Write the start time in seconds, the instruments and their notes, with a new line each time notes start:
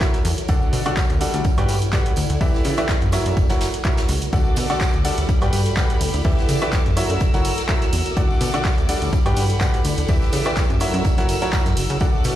Already playing: ambient pad F#4 E5
0.01 grand piano F#3 E4 F#4 A#4 C#5 E5, kick, snare, clap, closed hi-hat, tambourine
0.14 snare, closed hi-hat, tambourine
0.25 analog synth bass E2, closed hi-hat, open hi-hat, tambourine
0.38 closed hi-hat, tambourine
0.48 analog synth bass D2, grand piano D3 D4 F#4 A4 D5 F#5, ambient pad E4, kick, closed hi-hat, tambourine
0.62 tambourine
0.72 analog synth bass B2, closed hi-hat, open hi-hat, tambourine
0.85 grand piano D3 D4 F#4 A4 D5 F#5, snare, closed hi-hat, tambourine, high woodblock
0.92 ambient pad A4 D5 F#5
0.97 kick, snare, clap, closed hi-hat, tambourine
1.09 analog synth bass D2, closed hi-hat, tambourine
1.21 grand piano G3 D4 F#4 A4 D5 F#5, closed hi-hat, open hi-hat, tambourine
1.34 analog synth bass D2, closed hi-hat, tambourine
1.44 kick, closed hi-hat, tambourine
1.57 analog synth bass G2, grand piano G3 F#4 G4 B4 D5 G5, snare, closed hi-hat, tambourine, high woodblock
1.68 analog synth bass G2, closed hi-hat, open hi-hat, tambourine
1.81 closed hi-hat, tambourine
1.92 grand piano G3 F#4 G4 B4 D5 F#5, kick, snare, clap, closed hi-hat, tambourine
2.05 closed hi-hat, tambourine
2.16 analog synth bass D2, closed hi-hat, open hi-hat, tambourine
2.30 analog synth bass D2, closed hi-hat, tambourine
2.41 analog synth bass E2, grand piano E3 E4 G4 B4 D5 E5, kick, open hi-hat, tambourine
2.54 snare, tambourine
2.64 analog synth bass C#3, closed hi-hat, open hi-hat, tambourine
2.77 grand piano E3 E4 G4 B4 D5 E5, snare, closed hi-hat, tambourine, high woodblock
2.88 kick, snare, clap, closed hi-hat, tambourine
3.01 analog synth bass F#2, closed hi-hat, tambourine
3.12 grand piano F#3 E4 F#4 A#4 C#5 E5, ambient pad F#4, snare, closed hi-hat, open hi-hat, tambourine, high woodblock
3.26 analog synth bass F#2, closed hi-hat, tambourine
3.37 analog synth bass F#1, kick, closed hi-hat, tambourine
3.49 grand piano F#3 E4 F#4 A#4 C#5 F#5, snare, closed hi-hat, tambourine
3.61 snare, closed hi-hat, open hi-hat, tambourine
3.67 ambient pad E5
3.73 closed hi-hat, tambourine
3.84 grand piano F#3 E4 F#4 A#4 C#5 E5, kick, clap, closed hi-hat, tambourine
3.97 snare, closed hi-hat
4.08 analog synth bass C#2, open hi-hat, tambourine
4.22 closed hi-hat, tambourine
4.33 analog synth bass D2, grand piano D3 D4 F#4 A4 D5 F#5, ambient pad E4, violin section A4 F#5 D6, kick, closed hi-hat, tambourine
4.44 ambient pad A4, tambourine
4.56 analog synth bass B2, closed hi-hat, open hi-hat, ride, tambourine
4.70 grand piano D3 D4 F#4 A4 D5 F#5, snare, closed hi-hat, tambourine, high woodblock
4.76 ambient pad D5 F#5, tambourine
4.81 kick, snare, clap, closed hi-hat
4.94 analog synth bass D2, closed hi-hat
5.05 grand piano G3 D4 F#4 A4 D5 F#5, closed hi-hat, open hi-hat, ride, tambourine
5.18 analog synth bass D2, closed hi-hat, tambourine
5.29 violin section G4 B5, kick, closed hi-hat, tambourine
5.41 analog synth bass G2, grand piano G3 F#4 G4 B4 D5 G5, snare, closed hi-hat, tambourine, high woodblock
5.53 analog synth bass G2, closed hi-hat, open hi-hat, ride, tambourine
5.65 closed hi-hat, tambourine
5.77 grand piano G3 F#4 G4 B4 D5 F#5, kick, snare, clap, closed hi-hat, tambourine
5.90 closed hi-hat, tambourine
6.01 analog synth bass D2, closed hi-hat, open hi-hat, ride, tambourine
6.14 analog synth bass D2, closed hi-hat, tambourine
6.24 analog synth bass E2, grand piano E3 E4 G4 B4 D5 E5, violin section E5 D6, kick, open hi-hat, tambourine
6.38 snare, tambourine
6.48 analog synth bass C#3, closed hi-hat, open hi-hat, ride, tambourine
6.62 grand piano E3 E4 G4 B4 D5 E5, snare, closed hi-hat, tambourine, high woodblock
6.72 kick, snare, clap, closed hi-hat, tambourine
6.86 analog synth bass F#2, closed hi-hat, tambourine
6.97 grand piano F#3 E4 F#4 A#4 C#5 E5, ambient pad F#4, violin section A#4 F#5 E6, closed hi-hat, open hi-hat, ride, tambourine, high woodblock
7.09 analog synth bass F#2, closed hi-hat, tambourine
7.15 ambient pad A#4
7.20 analog synth bass F#1, kick, closed hi-hat, tambourine
7.34 grand piano F#3 E4 F#4 A#4 C#5 F#5, snare, closed hi-hat, tambourine
7.45 closed hi-hat, open hi-hat, ride, tambourine
7.51 ambient pad E5
7.57 snare, closed hi-hat, tambourine
7.69 grand piano F#3 E4 F#4 A#4 C#5 E5, kick, snare, clap, closed hi-hat, tambourine
7.82 snare, closed hi-hat, tambourine
7.92 analog synth bass E2, closed hi-hat, open hi-hat, ride, tambourine
8.06 closed hi-hat, tambourine
8.16 analog synth bass D2, grand piano D3 D4 F#4 A4 D5 F#5, ambient pad E4, violin section A4 D6, kick, closed hi-hat, tambourine
8.30 tambourine
8.41 analog synth bass B2, closed hi-hat, open hi-hat, ride, tambourine
8.54 grand piano D3 D4 F#4 A4 D5 F#5, ambient pad D5 F#5, snare, closed hi-hat, tambourine, high woodblock
8.61 ambient pad A4
8.65 kick, snare, clap, closed hi-hat, tambourine
8.78 analog synth bass D2, closed hi-hat, tambourine
8.88 grand piano G3 D4 F#4 A4 D5 F#5, closed hi-hat, open hi-hat, ride, tambourine
9.02 analog synth bass D2, closed hi-hat, tambourine
9.13 violin section G4 F#5 B5, kick, closed hi-hat, tambourine
9.25 analog synth bass G2, grand piano G3 F#4 G4 B4 D5 G5, snare, closed hi-hat, tambourine, high woodblock
9.36 analog synth bass G2, closed hi-hat, open hi-hat, ride, tambourine
9.50 closed hi-hat, tambourine
9.60 grand piano G3 F#4 G4 B4 D5 F#5, kick, snare, clap, closed hi-hat, tambourine
9.74 closed hi-hat, tambourine
9.84 analog synth bass D2, closed hi-hat, open hi-hat, ride, tambourine
9.98 analog synth bass D2, closed hi-hat, tambourine
10.08 analog synth bass E2, grand piano E3 E4 G4 B4 D5 E5, violin section E5 D6, kick, open hi-hat, tambourine
10.22 snare, tambourine
10.32 analog synth bass C#3, closed hi-hat, open hi-hat, ride, tambourine
10.45 grand piano E3 E4 G4 B4 D5 E5, snare, closed hi-hat, tambourine, high woodblock
10.56 kick, snare, clap, closed hi-hat, tambourine
10.70 analog synth bass F#2, closed hi-hat, tambourine
10.80 grand piano F#3 E4 F#4 A#4 C#5 E5, ambient pad F#4, violin section A#4 F#5 E6, closed hi-hat, open hi-hat, ride, tambourine, high woodblock
10.94 analog synth bass F#2, closed hi-hat, tambourine
11.04 analog synth bass F#1, kick, closed hi-hat, tambourine
11.18 grand piano F#3 E4 F#4 A#4 C#5 F#5, snare, closed hi-hat, tambourine
11.29 closed hi-hat, open hi-hat, ride, tambourine
11.34 ambient pad E5
11.42 grand piano F#3 E4 F#4 A#4 C#5 A#5, snare, closed hi-hat, tambourine
11.53 grand piano F#3 E4 F#4 A#4 C#5 F#5, kick, snare, clap, closed hi-hat, tambourine
11.66 analog synth bass F#2, snare, closed hi-hat, tambourine
11.77 analog synth bass F#1, closed hi-hat, open hi-hat, ride, tambourine
11.89 analog synth bass C#3, closed hi-hat, tambourine
12.00 analog synth bass D2, grand piano D3 D4 F#4 A4 D5 F#5, ambient pad E4, violin section A4 F#5 D6, kick, closed hi-hat, tambourine
12.13 tambourine
12.24 analog synth bass B2, closed hi-hat, open hi-hat, ride, tambourine